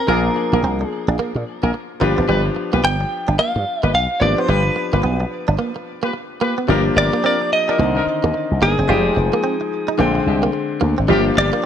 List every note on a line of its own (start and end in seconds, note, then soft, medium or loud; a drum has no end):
0.00 0.87 A#4 medium
0.07 0.28 A#1 loud
0.07 1.96 F3 medium
0.07 1.97 A#3 medium
0.07 0.20 A#3 medium
0.07 0.23 D4 medium
0.07 1.97 D4 medium
0.07 0.23 G#4 medium
0.07 1.97 G#4 medium
0.07 0.23 A#4 loud
0.36 muted clean electric guitar stroke soft
0.52 0.60 A#1 medium
0.52 0.61 A#3 medium
0.52 0.62 D4 medium
0.52 0.62 G#4 medium
0.52 0.62 A#4 medium
0.63 0.83 C2 loud
0.63 0.76 C4 medium
0.81 muted clean electric guitar stroke soft
0.87 1.42 G#4 medium
1.08 1.15 A#1 loud
1.08 1.16 D4 medium
1.18 1.31 A#3 medium
1.18 muted slap bass stroke medium
1.35 1.43 A#2 loud
1.35 muted clean electric guitar stroke soft
1.62 1.71 A#1 loud
1.62 1.71 A#3 medium
1.62 1.72 D4 medium
1.62 1.72 G#4 medium
1.62 1.72 A#4 medium
1.74 muted clean electric guitar stroke soft
2.00 2.13 G1 loud
2.00 4.17 F3 medium
2.00 2.13 A#3 medium
2.00 4.17 B3 medium
2.00 4.17 D4 medium
2.00 2.16 F4 medium
2.00 2.16 G4 medium
2.00 4.18 G4 medium
2.00 2.16 B4 medium
2.18 2.26 G#1 medium
2.18 2.25 B3 medium
2.28 2.49 G1 loud
2.28 2.41 G3 medium
2.28 2.43 F4 medium
2.28 2.43 G4 medium
2.28 2.43 B4 loud
2.56 muted clean electric guitar stroke soft
2.72 2.81 B1 medium
2.72 2.80 A#3 medium
2.72 2.82 F4 medium
2.72 2.82 G4 medium
2.72 2.82 B4 medium
2.84 3.03 G1 loud
2.84 2.96 B3 medium
2.84 3.39 G5 loud
3.01 muted clean electric guitar stroke soft
3.28 3.36 G1 medium
3.28 3.35 D4 medium
3.39 3.51 A#3 medium
3.39 3.83 F5 loud
3.39 muted slap bass stroke soft
3.56 3.63 G2 loud
3.56 muted clean electric guitar stroke soft
3.83 3.91 G1 medium
3.83 3.91 A#3 medium
3.83 3.92 F4 medium
3.83 3.92 G4 medium
3.83 3.92 B4 medium
3.83 3.94 D#5 loud
3.94 4.06 B1 medium
3.94 4.20 F5 loud
3.94 muted clean electric guitar stroke soft
4.20 4.33 G#1 medium
4.20 6.37 F3 medium
4.20 4.33 A#3 medium
4.20 6.37 B3 medium
4.20 6.37 D4 medium
4.20 6.38 G4 medium
4.20 4.22 C#5 medium
4.20 4.40 D5 medium
4.38 4.46 B3 medium
4.38 4.50 C5 medium
4.48 4.69 G1 loud
4.48 4.61 G3 medium
4.48 4.63 F4 medium
4.48 4.63 G4 medium
4.48 4.63 B4 medium
4.48 6.14 B4 medium
4.76 muted clean electric guitar stroke soft
4.93 5.01 G1 medium
4.93 5.01 A#3 medium
4.93 5.02 F4 medium
4.93 5.02 G4 medium
4.93 5.02 B4 medium
5.03 5.24 B1 loud
5.03 5.16 B3 medium
5.20 muted clean electric guitar stroke soft
5.48 5.56 G1 medium
5.48 5.55 D4 medium
5.59 5.71 A#3 medium
5.76 muted clean electric guitar stroke soft
6.03 6.10 A#3 medium
6.03 6.12 F4 medium
6.03 6.12 G4 medium
6.03 6.12 B4 medium
6.13 muted clean electric guitar stroke soft
6.41 6.53 A#3 medium
6.41 6.56 F4 medium
6.41 6.56 G4 medium
6.41 6.56 B4 medium
6.58 6.65 B3 medium
6.68 6.89 G1 loud
6.68 7.76 F3 medium
6.68 6.81 G3 medium
6.68 6.76 A3 medium
6.68 7.77 D4 medium
6.68 6.83 F4 medium
6.68 6.83 G4 medium
6.68 7.77 G4 loud
6.68 6.84 A#4 loud
6.75 7.80 A#3 medium
6.96 7.09 G1 loud
6.96 7.11 F4 medium
6.96 7.11 G4 medium
6.96 7.11 A#4 medium
6.96 7.25 D5 loud
6.96 muted clean electric guitar stroke soft
7.13 7.21 A#3 medium
7.23 7.36 C4 medium
7.23 7.38 F4 medium
7.23 7.39 G4 medium
7.23 7.39 A#4 medium
7.23 7.53 D5 loud
7.41 muted clean electric guitar stroke soft
7.53 8.65 D#5 loud
7.68 7.76 D4 medium
7.68 7.77 F4 medium
7.68 7.77 G4 medium
7.68 7.77 A#4 medium
7.78 7.99 C2 loud
7.78 8.87 D3 medium
7.78 8.86 D#3 medium
7.78 7.91 A#3 medium
7.78 8.87 C4 medium
7.78 8.87 A#4 medium
7.96 8.05 D4 medium
7.96 8.05 D#4 medium
7.96 8.05 A#4 medium
7.96 muted clean electric guitar stroke soft
8.06 muted slap bass stroke soft
8.24 8.31 D#2 medium
8.24 8.31 A#3 medium
8.34 muted clean electric guitar stroke soft
8.51 8.59 C2 medium
8.61 8.74 G1 loud
8.61 8.74 A#3 medium
8.61 8.76 D4 medium
8.61 8.76 D#4 medium
8.61 10.78 G#4 medium
8.61 8.76 A#4 medium
8.79 8.86 F#1 loud
8.79 8.86 C4 medium
8.88 9.09 F1 loud
8.88 9.96 F3 medium
8.88 8.97 G3 medium
8.88 9.14 G#3 medium
8.88 9.14 D#4 medium
8.88 9.97 D#4 medium
8.88 9.01 F4 medium
8.88 9.15 G4 loud
8.88 9.97 G5 medium
8.95 9.97 G#3 medium
9.16 9.29 F1 loud
9.16 muted clean electric guitar stroke soft
9.33 9.41 A#3 medium
9.44 9.56 C4 loud
9.61 muted clean electric guitar stroke soft
9.88 9.96 D#4 medium
9.98 10.19 A#1 loud
9.98 11.06 D3 medium
9.98 11.06 G#3 medium
9.98 10.11 A#3 medium
9.98 11.07 C4 medium
9.98 11.07 G5 medium
10.15 muted clean electric guitar stroke soft
10.26 10.47 C2 loud
10.26 10.41 G#3 medium
10.26 10.41 C4 medium
10.26 10.41 D4 medium
10.26 10.41 G4 medium
10.43 10.51 A#3 medium
10.53 muted clean electric guitar stroke soft
10.81 10.94 D2 medium
10.81 10.93 A#3 medium
10.98 11.06 G#1 medium
10.98 11.06 C4 medium
11.08 11.29 G1 loud
11.08 11.66 F3 medium
11.08 11.21 G3 medium
11.08 11.17 A3 medium
11.08 11.24 A#3 medium
11.08 11.66 D4 medium
11.08 11.24 F4 medium
11.08 11.24 G4 loud
11.08 11.66 G4 medium
11.15 11.66 A#3 medium
11.36 11.49 G1 loud
11.36 11.51 A#3 medium
11.36 11.52 F4 medium
11.36 11.52 G4 medium
11.36 11.65 D5 loud
11.36 muted clean electric guitar stroke soft
11.53 11.61 A#3 medium